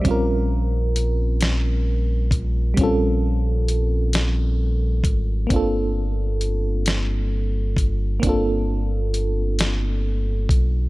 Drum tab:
HH |x-xx-x|x-xx-x|x-xx-x|x-xx-x|
SD |---o--|---o--|---o--|---o--|
BD |o----o|o----o|o----o|o----o|